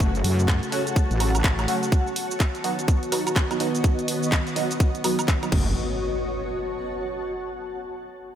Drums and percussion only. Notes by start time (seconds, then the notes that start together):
0.00 kick, closed hi-hat, shaker
0.15 closed hi-hat, shaker
0.24 open hi-hat
0.39 shaker
0.48 kick, clap, closed hi-hat, shaker
0.63 closed hi-hat, shaker
0.72 open hi-hat
0.87 closed hi-hat, shaker
0.96 kick, closed hi-hat, shaker
1.11 closed hi-hat, shaker
1.20 open hi-hat, high woodblock
1.35 closed hi-hat, high woodblock, shaker
1.44 kick, clap, closed hi-hat, shaker
1.59 closed hi-hat, high woodblock, shaker
1.68 open hi-hat
1.83 closed hi-hat, shaker
1.92 kick, closed hi-hat, shaker
2.07 shaker
2.16 open hi-hat
2.31 shaker
2.40 kick, clap, closed hi-hat, shaker
2.55 closed hi-hat, shaker
2.64 open hi-hat
2.79 closed hi-hat, shaker
2.88 kick, closed hi-hat, shaker
3.03 closed hi-hat, shaker
3.12 open hi-hat, high woodblock
3.27 closed hi-hat, high woodblock, shaker
3.36 kick, clap, closed hi-hat, shaker
3.51 closed hi-hat, high woodblock, shaker
3.60 open hi-hat
3.75 closed hi-hat, shaker
3.84 kick, closed hi-hat, shaker
3.99 closed hi-hat, shaker
4.08 open hi-hat
4.23 shaker
4.32 kick, clap, closed hi-hat, shaker
4.47 closed hi-hat, shaker
4.56 open hi-hat
4.71 closed hi-hat, shaker
4.80 kick, closed hi-hat, shaker
4.95 closed hi-hat, shaker
5.04 open hi-hat, high woodblock
5.19 closed hi-hat, high woodblock, shaker
5.28 kick, clap, closed hi-hat, shaker
5.43 closed hi-hat, high woodblock, shaker
5.52 kick, crash